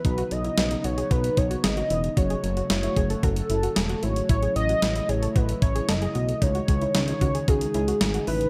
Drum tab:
HH |xxxxxxxxxxxxxxxx|xxxxxxxxxxxxxxxx|xxxxxxxxxxxxxxxx|xxxxxxxxxxxxxxox|
SD |----o-------o---|----o-------o---|----o-------o---|----o-------o---|
BD |o-------o-o-----|o-----o-o-------|o-------o-o-----|o-o---o-o-------|